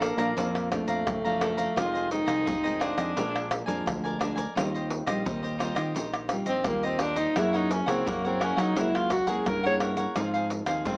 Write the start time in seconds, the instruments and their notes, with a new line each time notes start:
Already playing: fingered electric bass A#1, nylon-string guitar F2 F3 A3 D4
0.00 tenor saxophone A#3, cavaquinho A4 D5 F5 A#5, pandeiro, tamborim, shaker
0.17 fingered electric bass A#2, nylon-string guitar F3 A3 D4, cavaquinho D5 F5 A#5, pandeiro, tamborim, shaker
0.37 fingered electric bass F2, nylon-string guitar A#2 F3 A3 D4, cavaquinho D5 F5 A#5, pandeiro, shaker, surdo
0.55 pandeiro, tamborim, shaker
0.71 nylon-string guitar F3 A3 D4, tenor saxophone A3, muted cavaquinho stroke, pandeiro, tamborim, shaker, surdo
0.88 fingered electric bass F2, cavaquinho D5 F5 A#5, pandeiro, shaker
1.07 fingered electric bass F#1, nylon-string guitar F2, pandeiro, tamborim, shaker, surdo
1.25 nylon-string guitar F3 A3 D4, cavaquinho D5 F5 A#5, pandeiro, shaker
1.41 cavaquinho A4 D5 F5 A#5, pandeiro, tamborim, shaker
1.57 cavaquinho D5 F5 A#5, pandeiro, shaker
1.76 fingered electric bass F1, nylon-string guitar F2 D#3 G#3 C4, cavaquinho F4 G#4 C5 D#5, tenor saxophone F4, pandeiro, tamborim, shaker, surdo
1.94 cavaquinho G#4 C5 D#5, pandeiro, shaker
2.10 nylon-string guitar D#3 G#3 C4, tenor saxophone D#4, muted cavaquinho stroke, pandeiro, shaker
2.26 fingered electric bass C2, cavaquinho G#4 C5 D#5, pandeiro, tamborim, shaker
2.45 fingered electric bass F1, nylon-string guitar C3, cavaquinho F4 G#4 C5 D#5, pandeiro, shaker, surdo
2.64 nylon-string guitar D#3 G#3 C4, cavaquinho G#4 C5 D#5, pandeiro, shaker
2.79 tenor saxophone D4, cavaquinho F4 G#4 C5 D#5, pandeiro, tamborim, shaker
2.97 fingered electric bass F2, cavaquinho G#4 C5 D#5, pandeiro, tamborim, shaker
3.16 fingered electric bass A#1, nylon-string guitar A#2 F3 G#3 D4, cavaquinho D4 A#4 D5 G#5, pandeiro, shaker, surdo
3.36 pandeiro, tamborim, shaker
3.50 muted cavaquinho stroke, pandeiro, tamborim, shaker
3.66 fingered electric bass F2, nylon-string guitar F3 G#3 D4, cavaquinho A#4 D5 G#5, pandeiro, shaker
3.86 fingered electric bass D2, nylon-string guitar F2, pandeiro, tamborim, shaker, surdo
4.04 cavaquinho A#4 D5 G#5, pandeiro, shaker
4.19 nylon-string guitar F3 G#3 D4, cavaquinho D4 A#4 D5 G#5, pandeiro, tamborim, shaker
4.36 cavaquinho A#4 D5 G#5, pandeiro, shaker
4.55 fingered electric bass D#2, nylon-string guitar D#3 G3 C4 F4, cavaquinho D#4 G4 C5 D#5, pandeiro, tamborim, shaker, surdo
4.74 cavaquinho G4 C5 D#5, pandeiro, shaker
4.90 muted cavaquinho stroke, pandeiro
5.06 fingered electric bass A#1, nylon-string guitar G3 C4 F4, cavaquinho G4 C5 D#5, pandeiro, tamborim, shaker
5.25 fingered electric bass D#2, nylon-string guitar A#2, cavaquinho D#4 G4 C5 D#5, pandeiro, shaker, surdo
5.43 cavaquinho G4 C5 D#5, pandeiro, shaker
5.58 nylon-string guitar G3 C4 F4, cavaquinho D#4 G4 C5 D#5, pandeiro, tamborim, shaker
5.75 fingered electric bass D#3, cavaquinho G4 C5 D#5, pandeiro, tamborim, shaker
5.94 fingered electric bass A#1, nylon-string guitar D#3, cavaquinho D#4 G4 C5 D#5, pandeiro, shaker, surdo
6.14 pandeiro, tamborim, shaker
6.29 nylon-string guitar G3 C4 F4, muted cavaquinho stroke, pandeiro, tamborim, shaker
6.46 fingered electric bass A#1, tenor saxophone C4, cavaquinho G4 C5 D#5, pandeiro, shaker
6.64 fingered electric bass D#2, nylon-string guitar A#2 G3 C4 F4, tenor saxophone A#3, pandeiro, tamborim, shaker, surdo
6.83 tenor saxophone C4, cavaquinho G4 C5 D#5, pandeiro, shaker
6.99 tenor saxophone D4, cavaquinho D#4 G4 C5 D#5, pandeiro, tamborim, shaker
7.16 tenor saxophone D#4, cavaquinho G4 C5 D#5, pandeiro, shaker
7.36 fingered electric bass F#2, nylon-string guitar F#3 A#3 E4 G#4, cavaquinho E4 A#4 C#5 F#5, tenor saxophone E4, pandeiro, tamborim, shaker, surdo
7.53 tenor saxophone D#4, cavaquinho A#4 C#5 F#5, pandeiro, shaker
7.70 tenor saxophone C#4, muted cavaquinho stroke, pandeiro, shaker
7.86 fingered electric bass C#2, nylon-string guitar A#3 E4 G#4, tenor saxophone C4, cavaquinho A#4 C#5 F#5, pandeiro, tamborim, shaker
8.05 fingered electric bass F#2, nylon-string guitar C#3, tenor saxophone A#3, cavaquinho E4 A#4 C#5 F#5, pandeiro, shaker, surdo
8.24 nylon-string guitar A#3 E4 G#4, tenor saxophone C4, cavaquinho A#4 C#5 F#5, pandeiro, shaker
8.40 tenor saxophone C#4, cavaquinho E4 A#4 C#5 F#5, pandeiro, tamborim
8.56 fingered electric bass F#3, tenor saxophone D#4, cavaquinho A#4 C#5 F#5, pandeiro, tamborim, shaker
8.75 fingered electric bass C#2, nylon-string guitar F#3 A#3 E4 G#4, cavaquinho E4 A#4 C#5 F#5, tenor saxophone E4, pandeiro, shaker, surdo
8.95 tenor saxophone F4, pandeiro, tamborim, shaker
9.10 tenor saxophone F#4, muted cavaquinho stroke, pandeiro, tamborim, shaker, surdo
9.26 fingered electric bass C#2, nylon-string guitar A#3 E4 G#4, tenor saxophone G#4, cavaquinho A#4 C#5 F#5, pandeiro, shaker
9.46 fingered electric bass G2, nylon-string guitar C#3, tenor saxophone A#4, pandeiro, tamborim, shaker, surdo
9.63 nylon-string guitar A#3 E4 G#4, cavaquinho A#4 C#5 F#5, tenor saxophone C#5, pandeiro, shaker
9.80 cavaquinho E4 A#4 C#5 F#5, pandeiro, tamborim
9.97 cavaquinho A#4 C#5 F#5, pandeiro, shaker
10.15 fingered electric bass G#2, nylon-string guitar G#2 F3 C4 D#4, cavaquinho F4 G#4 C5 F5, pandeiro, tamborim, shaker, surdo
10.34 cavaquinho G#4 C5 F5, pandeiro, shaker
10.50 muted cavaquinho stroke, pandeiro, shaker
10.66 fingered electric bass D#2, nylon-string guitar F3 C4 D#4, cavaquinho G#4 C5 F5, pandeiro, tamborim, shaker
10.85 fingered electric bass G#2, nylon-string guitar D#3, tenor saxophone C4, cavaquinho F4 G#4 C5 F5, pandeiro, shaker, surdo